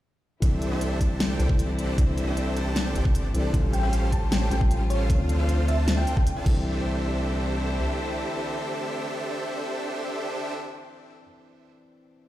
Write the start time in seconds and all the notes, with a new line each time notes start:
0.40 C2 D3 E3 A3 C4 D4 E4 G4 A4 C5 E5, kick, closed hi-hat
0.44 A4
0.62 closed hi-hat
0.71 D4 G4 A4 C5 E5
0.81 closed hi-hat
1.01 D4 G4 A4 C5 A5, kick, closed hi-hat
1.20 snare, closed hi-hat
1.30 D4 G4 A4 C5 G5
1.39 C2 E3 C4 D4 A4, closed hi-hat
1.49 kick
1.59 D4 G4 A4 C5 D5, closed hi-hat
1.79 closed hi-hat
1.96 C2 E3 C4 D4 G4 A4 C5 E5, kick, closed hi-hat
2.00 A4
2.18 closed hi-hat
2.27 D4 G4 A4 C5 E5
2.37 closed hi-hat
2.56 D4 G4 A4 C5 A5, closed hi-hat
2.76 snare, closed hi-hat
2.86 D4 G4 A4 C5 G5
2.95 G1, closed hi-hat
3.05 kick
3.15 D4 G4 A4 C5 D5, closed hi-hat
3.33 C2 E3 C4 D4 A4, closed hi-hat
3.52 A1 C#3 G3 C#4 F4 G4 A4 C5 F5, kick, closed hi-hat
3.73 G5, closed hi-hat
3.83 C#4 G4 A4 C5 F5 G5
3.93 closed hi-hat
4.12 C#4 G4 A4 C5 A5, kick, closed hi-hat
4.32 G5, snare, closed hi-hat
4.42 C#4 G4 A4 C5 G5
4.50 A1 G3 C#4 F4 A4 G5, closed hi-hat
4.61 kick
4.71 C#4 G4 A4 C5 F5, closed hi-hat
4.90 C#5, closed hi-hat
5.08 D2 D3 F3 A3 C4 D4 F4 A4 C5 F5, kick, closed hi-hat
5.12 A4
5.29 closed hi-hat
5.39 D4 F4 A4 C5 F5
5.49 closed hi-hat
5.68 D4 F4 A4 C5 E5 A5, closed hi-hat
5.88 snare, closed hi-hat
5.97 D4 F4 A4 C5 G5
6.07 closed hi-hat
6.17 G5, kick
6.27 closed hi-hat
6.36 D4 F4 A4 C5 A5
6.43 C2 D3 E3 A3 C4 D4 E4 G4 A4 C5 E5, kick, crash
6.47 D4 A4